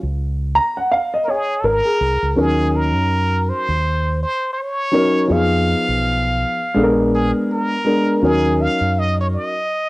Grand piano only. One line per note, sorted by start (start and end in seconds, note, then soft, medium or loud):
0.55 0.75 A#5 loud
0.77 0.90 F#5 medium
0.92 1.11 F5 medium
1.14 1.28 D#5 medium
1.28 1.65 C#5 medium
1.64 1.87 A#4 medium
1.85 2.33 G#4 medium
2.36 3.64 F#3 medium
2.36 3.64 C#4 medium
2.36 3.64 D#4 medium
2.36 3.65 A#4 medium
4.91 5.24 F#3 medium
4.91 5.25 C#4 medium
4.91 5.25 D#4 medium
4.91 5.26 A#4 medium
5.28 6.56 F3 medium
5.28 6.56 B3 medium
5.28 6.57 D#4 medium
5.28 6.57 G#4 medium
6.74 7.72 G#3 medium
6.74 7.72 B3 medium
6.74 7.72 D4 medium
6.74 6.84 A4 medium
6.83 7.76 A#4 loud
7.84 8.17 G#3 medium
7.84 8.18 B3 medium
7.84 8.18 D4 medium
7.84 8.18 A#4 medium
8.22 9.49 F#3 medium
8.22 9.50 C#4 medium
8.22 9.50 D#4 medium
8.22 9.50 A#4 medium